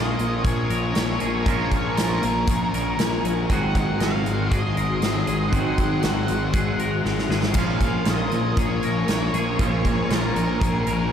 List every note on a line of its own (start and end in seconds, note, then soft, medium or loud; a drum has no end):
0.00 0.15 A#1 medium
0.00 0.20 A#2 medium
0.00 1.44 A#2 medium
0.00 0.19 F3 medium
0.00 1.45 F3 medium
0.00 1.46 G#3 medium
0.00 0.17 A#3 medium
0.00 1.46 C#4 medium
0.00 1.46 F4 medium
0.00 1.97 F4 medium
0.00 0.45 G#4 medium
0.00 1.47 A#4 medium
0.00 3.47 A#4 medium
0.00 0.43 D#5 medium
0.00 3.46 G#5 medium
0.00 3.46 C#6 medium
0.17 0.40 A#1 medium
0.17 0.93 A#2 medium
0.17 0.94 F3 medium
0.17 0.93 A#3 medium
0.17 closed hi-hat medium
0.44 0.65 A#1 medium
0.44 0.70 G#4 medium
0.44 1.41 C#5 medium
0.44 kick loud
0.44 closed hi-hat medium
0.70 0.91 A#1 medium
0.70 1.21 A#4 medium
0.70 closed hi-hat medium
0.94 1.17 A#1 medium
0.94 1.44 A#2 medium
0.94 1.45 F3 medium
0.94 1.46 A#3 medium
0.94 snare loud
0.94 closed hi-hat medium
1.20 1.42 A#1 medium
1.20 1.46 G#4 medium
1.20 closed hi-hat medium
1.43 1.88 A#1 medium
1.43 2.20 A#2 medium
1.43 3.48 A#2 medium
1.43 2.21 F3 medium
1.43 3.48 F3 medium
1.43 3.50 G#3 medium
1.43 1.96 G#4 medium
1.43 1.97 C#5 medium
1.43 kick loud
1.47 2.19 A#3 medium
1.47 3.49 C#4 medium
1.47 3.49 F4 medium
1.47 3.49 A#4 medium
1.47 closed hi-hat medium
1.72 kick medium
1.72 closed hi-hat medium
1.96 2.19 A#1 medium
1.96 2.48 F4 medium
1.96 3.20 A#4 medium
1.96 snare loud
1.96 closed hi-hat medium
2.21 2.44 A#1 medium
2.21 2.96 A#2 medium
2.21 2.97 F3 medium
2.21 2.96 A#3 medium
2.21 closed hi-hat medium
2.47 2.68 A#1 medium
2.47 2.78 G#4 medium
2.47 kick loud
2.47 closed hi-hat medium
2.73 2.94 A#1 medium
2.73 3.25 A#4 medium
2.73 closed hi-hat medium
2.98 3.19 A#1 medium
2.98 3.48 A#2 medium
2.98 3.48 F3 medium
2.98 3.49 A#3 medium
2.98 snare loud
2.98 closed hi-hat medium
3.24 3.45 A#1 medium
3.24 3.51 G#4 medium
3.24 closed hi-hat medium
3.49 3.91 G#1 medium
3.49 5.49 G#2 medium
3.49 4.27 G#2 medium
3.49 5.50 D#3 medium
3.49 4.25 D#3 medium
3.49 5.51 F#3 medium
3.49 4.24 G#3 loud
3.49 5.52 C4 medium
3.49 7.52 F#4 medium
3.49 5.52 F#4 medium
3.49 7.52 G#4 medium
3.49 4.03 G#4 medium
3.49 3.76 F#5 loud
3.49 7.52 C6 medium
3.49 kick loud
3.49 closed hi-hat medium
3.75 4.00 F#5 loud
3.75 kick medium
3.75 closed hi-hat medium
4.00 4.22 G#1 medium
4.00 4.55 F#4 medium
4.00 4.54 F5 medium
4.00 snare loud
4.00 closed hi-hat medium
4.24 4.47 G#1 medium
4.24 4.99 G#2 medium
4.24 5.01 D#3 medium
4.24 5.03 G#3 medium
4.24 closed hi-hat medium
4.50 4.72 G#1 medium
4.50 4.77 G#4 medium
4.50 5.56 D#5 medium
4.50 kick loud
4.50 closed hi-hat medium
4.77 4.97 G#1 medium
4.77 5.27 A#4 medium
4.77 closed hi-hat medium
5.00 5.23 G#1 medium
5.00 5.51 G#2 medium
5.00 5.51 D#3 medium
5.00 5.55 G#3 medium
5.00 snare loud
5.00 closed hi-hat medium
5.27 5.48 G#1 medium
5.27 5.53 G#4 medium
5.27 closed hi-hat medium
5.48 7.54 G#2 medium
5.48 7.54 D#3 medium
5.48 7.54 F#3 medium
5.48 6.00 F#5 medium
5.53 5.94 G#1 medium
5.53 6.28 G#2 medium
5.53 6.28 D#3 medium
5.53 6.28 G#3 medium
5.53 7.55 C4 medium
5.53 7.55 F#4 medium
5.53 6.04 G#4 medium
5.53 kick loud
5.53 closed hi-hat medium
5.78 kick medium
5.78 closed hi-hat medium
6.01 6.25 G#1 medium
6.01 6.55 F#4 medium
6.01 7.26 F#5 medium
6.01 snare loud
6.01 closed hi-hat medium
6.28 6.50 G#1 medium
6.28 7.04 G#2 medium
6.28 7.04 D#3 medium
6.28 7.07 G#3 medium
6.28 closed hi-hat medium
6.53 6.75 G#1 medium
6.53 6.79 G#4 medium
6.53 kick loud
6.53 closed hi-hat medium
6.78 7.00 G#1 medium
6.78 7.30 A#4 medium
6.78 closed hi-hat medium
7.05 7.26 G#1 medium
7.05 7.54 G#2 medium
7.05 7.55 D#3 medium
7.05 7.55 G#3 medium
7.05 snare medium
7.19 snare medium
7.29 7.55 G#1 medium
7.29 7.55 G#4 medium
7.29 snare medium
7.43 snare medium
7.54 7.96 A#1 medium
7.54 8.33 A#2 medium
7.54 9.56 A#2 medium
7.54 8.32 F3 medium
7.54 9.58 F3 medium
7.54 9.59 G#3 medium
7.54 8.31 A#3 medium
7.54 9.59 C#4 medium
7.54 8.59 G#4 medium
7.54 11.12 A#4 medium
7.54 7.82 F5 loud
7.54 11.12 G#5 medium
7.54 11.12 C#6 medium
7.54 kick loud
7.54 closed hi-hat medium
7.54 crash medium
7.58 9.59 F4 medium
7.80 8.09 F5 medium
7.80 kick medium
7.80 closed hi-hat medium
8.05 8.27 A#1 medium
8.05 10.10 F4 medium
8.05 snare loud
8.05 closed hi-hat medium
8.10 8.59 D#5 medium
8.31 8.52 A#1 medium
8.31 9.05 A#2 medium
8.31 9.07 F3 medium
8.31 9.06 A#3 medium
8.31 closed hi-hat medium
8.57 8.78 A#1 medium
8.57 8.84 G#4 medium
8.57 9.61 C#5 medium
8.57 kick loud
8.57 closed hi-hat medium
8.83 9.04 A#1 medium
8.83 9.34 A#4 medium
8.83 closed hi-hat medium
9.06 9.28 A#1 medium
9.06 9.57 A#2 medium
9.06 9.58 F3 medium
9.06 9.58 A#3 medium
9.06 snare loud
9.06 closed hi-hat medium
9.34 9.54 A#1 medium
9.34 9.61 G#4 medium
9.34 closed hi-hat medium
9.57 10.01 A#1 medium
9.57 11.12 A#2 medium
9.57 10.33 A#2 medium
9.57 11.12 F3 medium
9.57 10.34 F3 medium
9.57 11.12 G#3 medium
9.57 10.35 A#3 medium
9.57 11.12 C#4 medium
9.57 11.12 F4 medium
9.57 10.10 G#4 medium
9.57 kick loud
9.57 closed hi-hat medium
9.62 10.13 C#5 medium
9.85 kick medium
9.85 closed hi-hat medium
10.09 10.30 A#1 medium
10.09 10.60 F4 medium
10.09 11.12 A#4 medium
10.09 snare loud
10.09 closed hi-hat medium
10.36 10.56 A#1 medium
10.36 11.10 A#2 medium
10.36 11.11 F3 medium
10.36 11.10 A#3 medium
10.36 closed hi-hat medium
10.60 10.82 A#1 medium
10.60 10.91 G#4 medium
10.60 kick loud
10.60 closed hi-hat medium
10.87 11.08 A#1 medium
10.87 11.12 A#4 medium
10.87 closed hi-hat medium